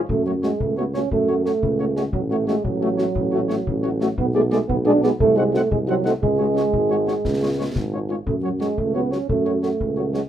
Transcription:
0.09 F#2 A3, concert bass drum
0.26 F#3 A3 C#4 F#4 C#5
0.42 G#3 A3 C#4 F#4 C#5, snare
0.60 C#2 A3, concert bass drum
0.77 A3 B3 C#4 F#4 C#5
0.94 A3 C#4 F#4 C#5, snare
1.11 F#2 A3, concert bass drum
1.28 A3 C#4 F#4 C#5
1.45 A3 C#4 F#4 C#5, snare
1.63 C#2, concert bass drum
1.79 A3 C#4 F#4 C#5
1.95 G#3 A3 C#4 F#4 C#5, snare
2.13 A1 F#3, concert bass drum
2.30 A3 C#4 F#4 C#5
2.47 G#3 A3 C#4 F#4 C#5, snare
2.65 A1 F#3, concert bass drum
2.81 A3 C#4 F#4 C#5
2.97 A3 C#4 F#4 C#5, snare
3.15 A1, concert bass drum
3.31 A3 C#4 F#4 C#5
3.48 A3 C#4 F#4 C#5, snare
3.67 A1, concert bass drum
3.82 A3 C#4 F#4 C#5
4.00 A3 C#4 F#4 C#5, snare
4.18 B1 B3, concert bass drum
4.35 G#3 A3 B3 G#4 D5
4.51 G#3 A3 B3 G#4 D5, snare
4.68 B1 B3, concert bass drum
4.85 G#3 B3 D4 G#4 D5
5.03 G#3 B3 G#4 D5, snare
5.19 C2 A3, concert bass drum
5.36 G#3 C4 D#4 F#4 F#5
5.53 A3 C4 D#4 F#4 F#5, snare
5.71 C2 G#3, concert bass drum
5.88 F#3 C4 D#4 F#4 F#5
6.05 A3 C4 D#4 F#4 F#5, snare
6.22 C#2 G#3, concert bass drum
6.38 G#3 C#4 F#4 C#5
6.55 G#3 C#4 F#4 C#5, snare
6.73 G#1, concert bass drum
6.90 G#3 C#4 F#4 C#5
7.07 G#3 C#4 F#4 C#5, snare
7.25 C#2, concert bass drum, snare
7.41 G#3 C#4 F4 C#5
7.58 G#3 C#4 F4 C#5
7.76 G#1, concert bass drum, snare
7.93 G#3 C#4 F4 C#5
8.10 G#3 C#4 F4 C#5
8.26 F#2 A3, concert bass drum
8.43 F#3 C#4 F#4 C#5
8.60 F#3 G#3 C#4 F#4 C#5, snare
8.78 C#2 A3, concert bass drum
8.94 F#3 B3 C#4 F#4 C#5
9.11 F#3 C#4 F#4 C#5, snare
9.29 F#2 A3, concert bass drum
9.45 F#3 C#4 F#4 C#5
9.62 F#3 A3 C#4 F#4 C#5, snare
9.80 C#2, concert bass drum
9.96 F#3 C#4 F#4 C#5
10.13 F#3 G#3 C#4 F#4 C#5, snare

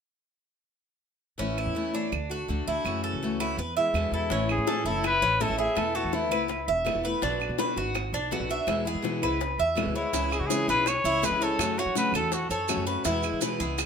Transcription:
1.38 A1 E3 A3 C#4 E4
1.58 E4, claves
1.66 E2
1.75 E3 A3 C#4 E4
1.94 A3 C#4 D4 E4
2.12 D2, muted steel-string acoustic guitar stroke, claves
2.30 A3 D4 F#4
2.48 D2 D3 A3 D4 F#4
2.67 D2 E4
2.85 F#2 C#3 E3 A3 C#4 F#4, claves
3.04 A4
3.13 C#2
3.23 C#3 E3 A3 C#4 F#4
3.40 A3 C#4 E4 F#4, claves
3.57 E2 B4, muted steel-string acoustic guitar stroke
3.77 G#3 B3 E4 E5
3.94 E2 B2 D3 G#3 B3 E4, claves
4.12 E2 E4 A4
4.30 A1 E3 A3 C#4 E4, high bongo
4.49 A3 C#4 E4 G#4, claves
4.58 A2
4.67 E3 A3 C#4 E4 A4, high bongo
4.85 F#1 A3 C#4 E4 A4, high bongo
5.04 B4, muted steel-string acoustic guitar stroke, high bongo, claves
5.22 A1 C#4, high bongo
5.40 E3 A3 C#4 E4 A4, high bongo, low bongo
5.49 A1
5.58 A3 C#4 E4 G#4 E5, high bongo
5.75 E1 E3 A3 B3 E4 A4, high bongo, claves
5.95 A3 B3 E4 F#4 A4
6.04 E2
6.12 E3 A3 B3 E4, high bongo
6.31 C#2 A3 B3 E4 B4, high bongo, claves
6.48 muted steel-string acoustic guitar stroke, high bongo
6.68 E1 E5, high bongo
6.85 E3 A3 B3 E4, high bongo, low bongo, claves
6.95 E1
7.03 A3 B3 E4 B4, high bongo
7.22 B1 B2 D3 B3 D4 F#4, high bongo
7.40 B3 D4 F#4, claves
7.49 B2
7.58 B2 D3 B3 D4 F#4 B4, high bongo
7.76 G#1 B3 D4 F#4, high bongo
7.94 muted steel-string acoustic guitar stroke, high bongo, claves
8.13 B1 D4, high bongo
8.31 B2 D3 B3 D4 F#4, high bongo, low bongo
8.40 B1
8.49 B3 D4 F#4 E5, high bongo
8.67 E2 B2 E3 G#3 B3 E4, high bongo, claves
8.85 G#3 B3 E4 G#4
8.95 E3
9.02 B2 E3 G#3 B3 E4, high bongo
9.22 C#2 G#3 B3 E4 B4, high bongo, claves
9.41 muted steel-string acoustic guitar stroke, high bongo
9.58 E2 E5, high bongo
9.75 B2 E3 G#3 B3 E4, high bongo, low bongo, claves
9.86 D2
9.96 G#3 B3 E4 C#5, high bongo
10.13 C#2 C#3 E3 G#3 C#4 E4, high bongo, maracas
10.31 G#3 C#4 E4 G#4, claves, maracas
10.40 C#3 F#4
10.46 C#3 G#4, high bongo
10.50 E3 G#3 C#4 E4 C#5, maracas
10.68 B1 G#3 C#4 E4 G#4 B4, high bongo, maracas
10.86 C#5, muted steel-string acoustic guitar stroke, high bongo, claves, maracas
11.04 C#2 E4, high bongo, maracas
11.22 C#3 E3 G#3 C#4 E4 G#4 B4, high bongo, low bongo, maracas
11.31 C#2
11.41 G#3 C#4 E4 A4 C#5, high bongo, maracas
11.58 F#2 C#3 F#3 A3 C#4 F#4, high bongo, claves, maracas
11.77 A3 C#4 F#4 C#5, maracas
11.86 F#3
11.95 C#3 F#3 A3 C#4 F#4 B4, high bongo, maracas
12.12 E2 A3 C#4 F#4 A4, high bongo, claves, maracas
12.32 F#4, muted steel-string acoustic guitar stroke, high bongo, maracas
12.49 F#2 A4 C#5, high bongo, maracas
12.68 C#3 F#3 A3 C#4 F#4, high bongo, low bongo, claves, maracas
12.77 F#2
12.86 A3 C#4 F#4 B4, high bongo, maracas
13.05 E2 B2 E3 G#3 B3 E4, high bongo, maracas
13.23 G#3 B3 E4, claves, maracas
13.33 E3
13.41 B2 E3 G#3 B3 E4 B4, high bongo, maracas
13.60 C#2 G#3 B3 E4 G#4, high bongo, maracas
13.78 muted steel-string acoustic guitar stroke, high bongo, claves, maracas

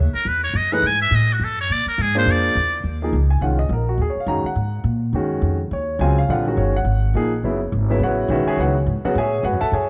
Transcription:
Already playing: D#2
0.14 A#4, muted upright bass stroke
0.25 E2 B4
0.43 C#5
0.54 F#2 D#5
0.72 E3 A3 D#4 G#4 B4 F#5
0.82 G#2 G#5
1.01 E5
1.11 A2
1.15 D#5
1.33 F#4
1.40 F#2
1.44 A4
1.61 C#5
1.70 A#2 D5
1.86 A#4, muted upright bass stroke
1.98 G#2 G#4
2.15 A#3 D4 F4 G#4 C5
2.26 F2
2.31 D5
2.55 E2
2.84 D#2
3.02 F3 A#3 D#4 G#4
3.13 C#2
3.30 G#5
3.41 C2 D#3 G#3 C#4 F4 F#5
3.59 D#5
3.69 A#1 A#4
3.89 F#4
3.98 D#2 G#4
4.10 C#5
4.15 muted upright bass stroke
4.20 F5
4.26 F#2 D#3 G#3 C#4 F#4 A#5
4.44 F#5, muted upright bass stroke
4.55 G#2
4.84 A#2
5.13 F#2 D#3 G#3 C#4 F#4
5.42 F2
5.71 D#2 C#5
5.99 C#2 C#3 F#3 C4 F4 G#5
6.18 F5
6.29 A#1 D3 G3 C4 F4 F#5
6.46 D#3 G#3 C#4 F#4 A#4
6.57 G1 C#5
6.76 F#5
6.85 G#1
7.14 A#1 F3 A#3 D#4 G#4
7.43 F#1 C#3 F#3 B3 E4
7.72 G#1
7.89 C#3 F#3 B3 E4 B4 C#5 E5
8.00 A1 F#4 B4 C#5 F#5
8.29 B1 D#3 G#3 C#4 E4 F#4 B4 C#5 E5
8.45 G#4 C#5 E5 G#5, muted upright bass stroke
8.57 C#2 C#3 F#3 B3 E4 F#4 C#5 F#5
8.62 B4
8.87 G#2
9.04 C#3 F#3 B3 F#4 B4 C#5 F#5, muted upright bass stroke
9.15 A2 G#4 E5 G#5
9.19 C#5
9.43 G#2 F#4 B4 C#5 F#5
9.53 F#2
9.61 E2 A4 E5 F#5 A5
9.72 F#2 G#4 C#5 E5 G#5

